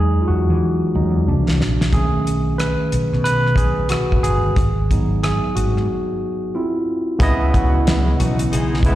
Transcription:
Already playing: fretless electric bass E2, tine electric piano F#3 G#3 D#4 G#4
0.21 tine electric piano F4
0.28 fretless electric bass E2, tine electric piano F#4
0.50 fretless electric bass E3
0.95 fretless electric bass E2, tine electric piano F#3 G#3 D#4
1.27 fretless electric bass C2, tine electric piano E3 A#3 D4
1.48 fretless electric bass C2, snare
1.61 fretless electric bass A#1, snare
1.81 snare
1.93 fretless electric bass B1, tine electric piano D#3 A3 C#4 G#4, kick, closed hi-hat
2.27 closed hi-hat
2.58 tine electric piano B4, cross-stick, closed hi-hat
2.92 fretless electric bass B1, closed hi-hat
3.13 fretless electric bass B2, cross-stick
3.24 tine electric piano B4, closed hi-hat
3.47 cross-stick
3.56 fretless electric bass B1, tine electric piano G#4, kick, closed hi-hat
3.89 tine electric piano F#4, cross-stick, closed hi-hat
4.12 fretless electric bass G#1, kick
4.23 fretless electric bass G1, tine electric piano G#4, closed hi-hat
4.56 fretless electric bass G#1, kick, closed hi-hat
4.91 tine electric piano F#3 B3 D#4, kick, closed hi-hat
5.23 tine electric piano G#4, cross-stick, closed hi-hat
5.56 fretless electric bass G#1, tine electric piano F#4, closed hi-hat
5.76 fretless electric bass G#2, cross-stick
6.55 tine electric piano C4 E4 F4
7.19 fretless electric bass C#2, tine electric piano C#3 B3 E4, string machine C#3 E3 B3, kick, closed hi-hat
7.23 tine electric piano D#5
7.40 horn section B2 E3 G#3 E4
7.53 horn section F#3 D#4 F#4, kick, closed hi-hat
7.86 horn section B2 E3 G#3 E4, snare, closed hi-hat
8.19 fretless electric bass B1, horn section F#3 D#4 F#4, closed hi-hat
8.39 closed hi-hat
8.51 fretless electric bass B1, horn section E3 G#3 D#4 G#4, closed hi-hat
8.74 snare
8.83 fretless electric bass C#2, tine electric piano C#3 B3 E4, horn section G3 B3 D#4 B4, kick, closed hi-hat
8.88 tine electric piano G#3

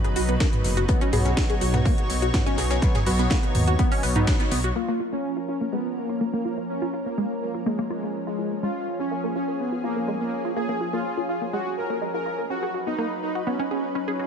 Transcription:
Already playing: analog polysynth B2 F#3 B3, analog synth pad F#3 D#4 B4
0.04 synth arpeggio sound G#4, cross-stick, closed hi-hat
0.16 detuned saw bass B1, synth arpeggio sound F#4, closed hi-hat, open hi-hat
0.29 synth arpeggio sound B3, closed hi-hat
0.40 synth arpeggio sound A#3, kick, snare, closed hi-hat
0.53 closed hi-hat, mid tom
0.64 detuned saw bass F#1, snare, closed hi-hat, open hi-hat
0.77 synth arpeggio sound F#4, closed hi-hat
0.88 analog polysynth B2 F#3 B3, synth arpeggio sound B3, analog synth pad C#5, kick, cross-stick, closed hi-hat
1.01 synth arpeggio sound C#4, closed hi-hat
1.12 detuned saw bass B1, analog polysynth B2 F#3 B3, synth arpeggio sound G#4, closed hi-hat, mid tom, open hi-hat
1.25 synth arpeggio sound C#4, snare, closed hi-hat
1.37 kick, snare, closed hi-hat
1.49 synth arpeggio sound G#4, closed hi-hat
1.61 detuned saw bass B1, synth arpeggio sound F#4, closed hi-hat, open hi-hat
1.74 synth arpeggio sound B3, cross-stick, snare, closed hi-hat, mid tom
1.85 synth arpeggio sound A#3, kick, closed hi-hat, open hi-hat
1.98 closed hi-hat
2.10 detuned saw bass B1, snare, closed hi-hat, open hi-hat
2.22 synth arpeggio sound F#4, closed hi-hat
2.34 synth arpeggio sound B3, kick, snare, closed hi-hat, mid tom
2.46 synth arpeggio sound C#4, closed hi-hat
2.57 detuned saw bass B1, synth arpeggio sound G#4, cross-stick, snare, closed hi-hat, open hi-hat
2.70 synth arpeggio sound C#4, snare, closed hi-hat
2.82 analog polysynth B2 F#3 B3, kick, snare, closed hi-hat
2.95 synth arpeggio sound G#4, snare, closed hi-hat, mid tom
3.06 detuned saw bass B1, analog polysynth B2 F#3 B3, synth arpeggio sound F#4, open hi-hat
3.19 synth arpeggio sound B3, snare, closed hi-hat
3.30 synth arpeggio sound A#3, kick, snare, closed hi-hat
3.43 cross-stick, closed hi-hat
3.55 detuned saw bass D#2, closed hi-hat, mid tom, open hi-hat
3.67 synth arpeggio sound F#4, closed hi-hat
3.79 synth arpeggio sound B3, kick, closed hi-hat
3.92 synth arpeggio sound C#4, open hi-hat
4.03 detuned saw bass B1, synth arpeggio sound B3, closed hi-hat, open hi-hat
4.16 analog polysynth B2 F#3 B3, synth arpeggio sound D#4, closed hi-hat, mid tom
4.27 synth arpeggio sound B3, kick, cross-stick, snare, closed hi-hat
4.40 synth arpeggio sound B3, closed hi-hat
4.51 detuned saw bass B1, synth arpeggio sound B3, snare, closed hi-hat, open hi-hat
4.64 synth arpeggio sound F#4, closed hi-hat
4.76 analog synth pad F3 C#4 A#4, synth arpeggio sound A#3, supersaw synth F4
4.88 synth arpeggio sound A#3
5.00 synth arpeggio sound F4
5.12 synth arpeggio sound A#3, supersaw synth C#4
5.37 synth arpeggio sound F4
5.48 supersaw synth C#4, synth arpeggio sound F4
5.61 synth arpeggio sound A#3
5.72 synth arpeggio sound G#3, supersaw synth B3
5.96 supersaw synth A#3
6.09 synth arpeggio sound F4
6.21 synth arpeggio sound A#3
6.33 supersaw synth A#3, synth arpeggio sound A#3
6.45 synth arpeggio sound F4
6.58 synth arpeggio sound A#3
6.69 supersaw synth C#4
6.82 synth arpeggio sound F4
6.94 synth arpeggio sound F4
7.06 supersaw synth A#3, synth arpeggio sound A#3
7.18 synth arpeggio sound G#3
7.42 supersaw synth A#3
7.54 synth arpeggio sound F4
7.66 supersaw synth G#3, synth arpeggio sound A#3
7.79 synth arpeggio sound A#3
7.90 supersaw synth G#3, synth arpeggio sound F4
8.03 synth arpeggio sound A#3
8.27 supersaw synth G#3, synth arpeggio sound F4
8.39 synth arpeggio sound F4
8.51 synth arpeggio sound A#3
8.63 synth arpeggio sound G#3, supersaw synth F4, analog synth pad G#4
9.00 supersaw synth C#4, synth arpeggio sound F4
9.11 synth arpeggio sound A#3
9.24 synth arpeggio sound A#3
9.35 supersaw synth C#4, synth arpeggio sound F4
9.48 synth arpeggio sound A#3
9.60 supersaw synth B3
9.72 synth arpeggio sound F4
9.84 supersaw synth A#3, synth arpeggio sound F4
9.96 synth arpeggio sound A#3
10.08 synth arpeggio sound G#3
10.21 supersaw synth A#3
10.45 synth arpeggio sound F4
10.56 synth arpeggio sound A#3, supersaw synth G#4
10.69 synth arpeggio sound A#3
10.81 synth arpeggio sound F4
10.93 synth arpeggio sound A#3, supersaw synth F4
11.17 synth arpeggio sound F4
11.29 synth arpeggio sound F4, supersaw synth F4
11.42 synth arpeggio sound A#3
11.53 synth arpeggio sound G#3, supersaw synth F#4
11.78 supersaw synth A#4
11.90 synth arpeggio sound A#3
12.02 synth arpeggio sound G#3
12.14 synth arpeggio sound F4, supersaw synth A#4
12.26 synth arpeggio sound F4
12.38 synth arpeggio sound A#3
12.50 analog synth pad F#3 D#4 B4, synth arpeggio sound C#4, supersaw synth F#4
12.63 synth arpeggio sound G#4
12.74 synth arpeggio sound F#4
12.87 synth arpeggio sound B3, supersaw synth D#4
12.98 synth arpeggio sound A#3
13.23 supersaw synth D#4
13.35 synth arpeggio sound F#4
13.47 synth arpeggio sound B3, supersaw synth C#4
13.59 synth arpeggio sound C#4
13.71 supersaw synth C#4, synth arpeggio sound G#4
13.95 synth arpeggio sound C#4
14.08 supersaw synth C#4, synth arpeggio sound G#4
14.19 synth arpeggio sound F#4

